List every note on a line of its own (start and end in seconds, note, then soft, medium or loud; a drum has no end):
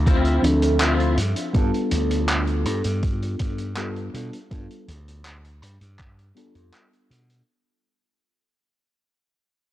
0.00 0.38 D2 medium
0.06 0.43 C4 medium
0.06 0.43 E4 medium
0.06 0.44 F4 medium
0.06 kick loud
0.06 closed hi-hat medium
0.25 closed hi-hat soft
0.42 1.17 D2 medium
0.42 1.49 F3 medium
0.42 1.50 C4 medium
0.42 1.50 D4 medium
0.42 1.51 A4 medium
0.42 1.51 E5 medium
0.42 closed hi-hat loud
0.62 closed hi-hat medium
0.80 1.17 C4 medium
0.80 1.17 E4 medium
0.80 1.17 F4 medium
0.80 clap loud
0.80 closed hi-hat medium
1.00 closed hi-hat soft
1.17 1.33 G2 medium
1.17 closed hi-hat loud
1.36 closed hi-hat medium
1.53 1.70 G2 medium
1.53 3.72 G3 medium
1.53 3.72 B3 medium
1.53 3.72 D4 medium
1.53 3.73 F4 medium
1.53 3.73 A4 loud
1.53 kick loud
1.53 closed hi-hat medium
1.74 closed hi-hat soft
1.91 2.66 D2 medium
1.91 closed hi-hat loud
2.11 closed hi-hat medium
2.28 clap loud
2.28 closed hi-hat medium
2.47 closed hi-hat soft
2.65 2.81 G2 medium
2.65 closed hi-hat medium
2.84 3.35 G2 medium
2.84 closed hi-hat medium
3.02 kick loud
3.02 closed hi-hat medium
3.22 closed hi-hat soft
3.39 4.13 G2 medium
3.39 kick loud
3.39 closed hi-hat medium
3.58 closed hi-hat medium
3.77 4.09 G3 medium
3.77 4.10 B3 medium
3.77 4.10 D4 medium
3.77 4.10 F4 medium
3.77 4.10 A4 loud
3.77 clap loud
3.77 closed hi-hat medium
3.96 closed hi-hat soft
4.13 4.29 B2 medium
4.13 4.36 G3 medium
4.13 4.36 B3 medium
4.13 4.37 D4 medium
4.13 4.37 F4 medium
4.13 4.37 A4 medium
4.13 closed hi-hat medium
4.33 closed hi-hat medium
4.51 4.66 G2 medium
4.51 4.86 G3 medium
4.51 4.86 B3 medium
4.51 4.87 D4 medium
4.51 4.87 F4 medium
4.51 4.87 A4 medium
4.51 kick loud
4.51 closed hi-hat medium
4.71 closed hi-hat soft
4.88 5.62 D2 medium
4.88 closed hi-hat medium
5.08 closed hi-hat medium
5.25 clap loud
5.25 closed hi-hat medium
5.44 closed hi-hat soft
5.62 5.77 G2 medium
5.62 closed hi-hat medium
5.81 6.31 G2 medium
5.81 closed hi-hat medium
5.99 kick loud
5.99 clap medium
5.99 closed hi-hat medium
6.19 closed hi-hat soft
6.35 7.42 G3 medium
6.35 7.43 B3 medium
6.35 7.43 D4 medium
6.35 7.43 F4 medium
6.35 7.44 A4 medium
6.35 closed hi-hat medium
6.55 6.70 F2 medium
6.55 closed hi-hat medium
6.73 clap loud
6.73 closed hi-hat medium
6.93 closed hi-hat soft
7.10 7.41 B2 medium
7.10 closed hi-hat medium
7.29 closed hi-hat medium